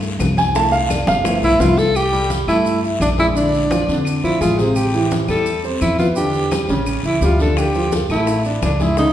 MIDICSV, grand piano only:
0, 0, Header, 1, 2, 480
1, 0, Start_track
1, 0, Key_signature, 0, "major"
1, 0, Tempo, 351083
1, 753, Time_signature, 4, 2, 24, 8
1, 12481, End_track
2, 0, Start_track
2, 0, Title_t, "Grand piano"
2, 0, Program_c, 0, 0
2, 0, Note_on_c, 0, 57, 58
2, 0, Note_on_c, 0, 62, 47
2, 0, Note_on_c, 0, 64, 67
2, 519, Note_on_c, 0, 80, 107
2, 695, Note_off_c, 0, 57, 0
2, 699, Note_off_c, 0, 62, 0
2, 702, Note_off_c, 0, 64, 0
2, 745, Note_on_c, 0, 57, 53
2, 749, Note_off_c, 0, 80, 0
2, 753, Note_on_c, 0, 62, 51
2, 760, Note_on_c, 0, 81, 103
2, 764, Note_on_c, 0, 64, 56
2, 984, Note_on_c, 0, 77, 109
2, 990, Note_off_c, 0, 81, 0
2, 1068, Note_off_c, 0, 57, 0
2, 1072, Note_off_c, 0, 62, 0
2, 1078, Note_off_c, 0, 64, 0
2, 1221, Note_off_c, 0, 77, 0
2, 1234, Note_on_c, 0, 74, 66
2, 1466, Note_off_c, 0, 74, 0
2, 1474, Note_on_c, 0, 77, 110
2, 1700, Note_on_c, 0, 53, 62
2, 1704, Note_on_c, 0, 57, 57
2, 1712, Note_on_c, 0, 59, 52
2, 1717, Note_on_c, 0, 64, 68
2, 1920, Note_off_c, 0, 77, 0
2, 2390, Note_off_c, 0, 53, 0
2, 2392, Note_off_c, 0, 57, 0
2, 2396, Note_off_c, 0, 59, 0
2, 2399, Note_off_c, 0, 64, 0
2, 2905, Note_on_c, 0, 55, 74
2, 2913, Note_on_c, 0, 67, 69
2, 3302, Note_off_c, 0, 55, 0
2, 3306, Note_off_c, 0, 67, 0
2, 3392, Note_on_c, 0, 57, 74
2, 3398, Note_on_c, 0, 69, 74
2, 3786, Note_off_c, 0, 57, 0
2, 3789, Note_off_c, 0, 69, 0
2, 3876, Note_on_c, 0, 64, 73
2, 3881, Note_on_c, 0, 76, 67
2, 4268, Note_off_c, 0, 64, 0
2, 4271, Note_off_c, 0, 76, 0
2, 4353, Note_on_c, 0, 56, 68
2, 4357, Note_on_c, 0, 68, 64
2, 4550, Note_off_c, 0, 56, 0
2, 4552, Note_off_c, 0, 68, 0
2, 4590, Note_on_c, 0, 50, 71
2, 4592, Note_on_c, 0, 62, 72
2, 4985, Note_off_c, 0, 50, 0
2, 4986, Note_off_c, 0, 62, 0
2, 5073, Note_on_c, 0, 53, 63
2, 5079, Note_on_c, 0, 65, 59
2, 5270, Note_off_c, 0, 53, 0
2, 5274, Note_off_c, 0, 65, 0
2, 5320, Note_on_c, 0, 50, 84
2, 5322, Note_on_c, 0, 62, 85
2, 5711, Note_off_c, 0, 50, 0
2, 5712, Note_off_c, 0, 62, 0
2, 5798, Note_on_c, 0, 53, 68
2, 5799, Note_on_c, 0, 65, 68
2, 5993, Note_off_c, 0, 53, 0
2, 5994, Note_off_c, 0, 65, 0
2, 6029, Note_on_c, 0, 56, 71
2, 6029, Note_on_c, 0, 68, 70
2, 6228, Note_off_c, 0, 56, 0
2, 6228, Note_off_c, 0, 68, 0
2, 6275, Note_on_c, 0, 48, 78
2, 6278, Note_on_c, 0, 60, 86
2, 6668, Note_off_c, 0, 48, 0
2, 6670, Note_off_c, 0, 60, 0
2, 6756, Note_on_c, 0, 52, 79
2, 6759, Note_on_c, 0, 64, 72
2, 7149, Note_off_c, 0, 52, 0
2, 7150, Note_off_c, 0, 64, 0
2, 7231, Note_on_c, 0, 55, 68
2, 7231, Note_on_c, 0, 67, 71
2, 7626, Note_off_c, 0, 55, 0
2, 7626, Note_off_c, 0, 67, 0
2, 7719, Note_on_c, 0, 60, 75
2, 7719, Note_on_c, 0, 72, 68
2, 8110, Note_off_c, 0, 60, 0
2, 8111, Note_off_c, 0, 72, 0
2, 8202, Note_on_c, 0, 59, 68
2, 8205, Note_on_c, 0, 71, 70
2, 8396, Note_off_c, 0, 59, 0
2, 8397, Note_off_c, 0, 71, 0
2, 8437, Note_on_c, 0, 50, 67
2, 8440, Note_on_c, 0, 62, 74
2, 8830, Note_off_c, 0, 50, 0
2, 8831, Note_off_c, 0, 62, 0
2, 8918, Note_on_c, 0, 55, 54
2, 8923, Note_on_c, 0, 67, 62
2, 9113, Note_off_c, 0, 55, 0
2, 9116, Note_off_c, 0, 67, 0
2, 9159, Note_on_c, 0, 49, 90
2, 9161, Note_on_c, 0, 61, 82
2, 9550, Note_off_c, 0, 49, 0
2, 9552, Note_off_c, 0, 61, 0
2, 9635, Note_on_c, 0, 52, 69
2, 9643, Note_on_c, 0, 64, 63
2, 9831, Note_off_c, 0, 52, 0
2, 9836, Note_off_c, 0, 64, 0
2, 9875, Note_on_c, 0, 55, 68
2, 9878, Note_on_c, 0, 67, 69
2, 10071, Note_off_c, 0, 55, 0
2, 10073, Note_off_c, 0, 67, 0
2, 10122, Note_on_c, 0, 50, 72
2, 10124, Note_on_c, 0, 62, 80
2, 10512, Note_off_c, 0, 50, 0
2, 10513, Note_off_c, 0, 62, 0
2, 10602, Note_on_c, 0, 53, 74
2, 10602, Note_on_c, 0, 65, 74
2, 10992, Note_off_c, 0, 53, 0
2, 10992, Note_off_c, 0, 65, 0
2, 11087, Note_on_c, 0, 57, 71
2, 11088, Note_on_c, 0, 69, 70
2, 11475, Note_off_c, 0, 57, 0
2, 11475, Note_off_c, 0, 69, 0
2, 11568, Note_on_c, 0, 62, 70
2, 11570, Note_on_c, 0, 74, 69
2, 11955, Note_off_c, 0, 62, 0
2, 11957, Note_off_c, 0, 74, 0
2, 12041, Note_on_c, 0, 56, 68
2, 12045, Note_on_c, 0, 68, 71
2, 12234, Note_off_c, 0, 56, 0
2, 12237, Note_off_c, 0, 68, 0
2, 12286, Note_on_c, 0, 61, 70
2, 12288, Note_on_c, 0, 49, 72
2, 12481, Note_off_c, 0, 49, 0
2, 12481, Note_off_c, 0, 61, 0
2, 12481, End_track
0, 0, End_of_file